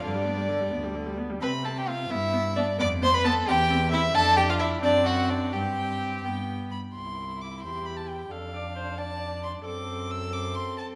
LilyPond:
<<
  \new Staff \with { instrumentName = "Violin" } { \time 6/8 \key c \major \tempo 4. = 88 d''2~ d''8 r8 | b''8 a''16 g''16 f''8 e''4 d''8 | d'''8 c'''16 b''16 a''8 g''4 e''8 | a''8 g''16 f''16 e''8 d''8 fis''8 d''8 |
g''4. g''4 b''8 | c'''4 d'''8 c'''8 b''16 a''16 g''8 | f''4. a''4 c'''8 | d'''4 e'''8 d'''8 c'''8 a''8 | }
  \new Staff \with { instrumentName = "Violin" } { \time 6/8 \key c \major d'2~ d'8 r8 | b'8 a'16 g'16 f'8 e'4 d'8 | d''8 c''16 b'16 a'8 g'4 e'8 | a'8 g'16 f'16 e'8 d'8 fis'8 d'8 |
g'2~ g'8 r8 | e'2. | d'2. | c'4. c'4. | }
  \new Staff \with { instrumentName = "Viola" } { \time 6/8 \key c \major d16 g16 b16 g16 d16 g16 b16 g16 d16 g16 b16 g16 | c'8 c'8 c'8 b8 b8 b8 | b8 b8 b8 c'8 c'8 c'8 | d'4. c'4. |
c'4. b4 r8 | r4. g'4. | a'8 d''8 c''8 d''4. | a'2. | }
  \new Staff \with { instrumentName = "Cello" } { \clef bass \time 6/8 \key c \major g,4. d,4. | c4. g,4. | f,4. e,4. | f,4. fis,4. |
g,4. g,4 r8 | c,4. e,4. | f,2. | fis,2. | }
>>